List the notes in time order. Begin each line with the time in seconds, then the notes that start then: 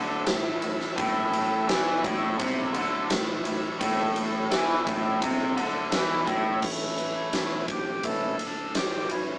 Already playing: D2 D3 E4 A4 C#5 E5
0.26 A1 A2, snare, ride
0.62 A1 A2, ride
0.80 snare
0.97 A1 A2 E4 A4 C#5 E5, kick, ride
1.33 ride
1.67 E2 E3, snare, ride
2.03 A1 A2, kick, ride
2.38 C2 C3, kick, ride
2.74 D2 D3, ride
3.10 A1 A2, snare, ride
3.45 A1 A2, ride
3.80 A1 A2 E4 A4 C#5 E5, kick, ride
4.16 ride
4.51 E2 E3, snare, ride
4.86 A1 A2, kick, ride
5.22 C2 C3, kick, ride
5.57 D2 D3, ride
5.92 E2 E3, snare, ride
6.27 A1 A2, kick, ride
6.62 A1 E3 A3 C#4, kick, crash
6.98 ride
7.33 E2, snare, ride
7.68 A1 G4, kick, ride
8.03 C2 E3 A3 C#4 A4, kick, ride
8.39 D2, ride
8.75 A1 G4, snare, ride
9.10 A1 E3 C#4, ride